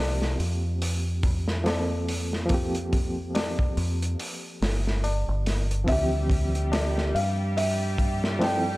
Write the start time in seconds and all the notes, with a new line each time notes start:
Already playing: C2 F3 A#3 C4 G4
0.22 snare
0.40 F2, open hi-hat
0.82 open hi-hat
1.23 kick, open hi-hat
1.48 snare
1.64 F3 A#3 C4 A4, snare, open hi-hat, tabla na
2.09 open hi-hat
2.33 snare
2.46 F3 A#3, open hi-hat
2.50 C4, kick
2.54 G4
2.75 closed hi-hat
2.93 kick, open hi-hat
3.35 snare, open hi-hat, tabla na
3.59 kick
3.77 F2, open hi-hat
4.02 closed hi-hat
4.20 open hi-hat
4.62 G1, snare, open hi-hat
4.87 snare
5.04 open hi-hat, tabla na
5.28 G1
5.46 snare, open hi-hat
5.71 closed hi-hat
5.84 D2 F3 G3 C4 G4, kick, open hi-hat
5.88 E3 G4 E5
6.30 kick, open hi-hat
6.55 closed hi-hat
6.72 snare, open hi-hat, tabla na
6.98 snare
7.15 G2 F5, open hi-hat
7.57 E5, open hi-hat
7.98 kick, open hi-hat
8.24 snare
8.39 F3 C4 E4 G5, snare, open hi-hat, tabla na
8.44 A4